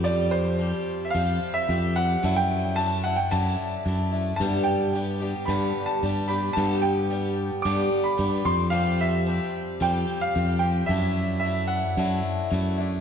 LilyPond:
<<
  \new Staff \with { instrumentName = "Grand piano" } { \time 4/4 \key g \major \tempo 4 = 111 d''8 c''4~ c''16. e''32 f''8. e''8. fis''8~ | fis''16 g''8. a''8 fis''16 g''16 a''4. r8 | a''8 g''4. b''8. a''8. b''8 | a''8 g''4. d'''8. b''8. c'''8 |
f''8 e''4 r8 g''8. f''8. g''8 | e''4 e''8 fis''4. r4 | }
  \new Staff \with { instrumentName = "Steel-string acoustic guitar" } { \time 4/4 \key g \major <f g c' g'>4 <f g c' g'>4 <f g c' g'>4 <f g c' g'>8 <g c' g'>8 | <fis a d' e'>4 <fis a d' e'>8 <a d' e'>8 <fis a d' e'>4 <fis a d' e'>8 <a d' e'>8 | <g, d g b d' g'>4 <g b d' g'>8 <g b d' g'>8 <g, d g b d' g'>4 <g b d' g'>8 <g b d' g'>8 | <g, d g b d' g'>4 <g b d' g'>4 <g, d g b d' g'>4 <g b d' g'>8 <g c' g'>8 |
<f g c' g'>4 <f g c' g'>4 <f g c' g'>4 <f g c' g'>8 <g c' g'>8 | <fis a d' e'>4 <fis a d' e'>4 <fis a d' e'>4 <fis a d' e'>8 <a d' e'>8 | }
  \new Staff \with { instrumentName = "Fingered electric bass" } { \clef bass \time 4/4 \key g \major f,4. r8 f,8 r8 f,4 | fis,2 fis,8 r8 fis,4 | g,2 g,8 r8 g,4 | g,2 g,8 r8 g,8 f,8~ |
f,4. r8 f,8 r8 f,4 | fis,2 fis,8 r8 fis,4 | }
>>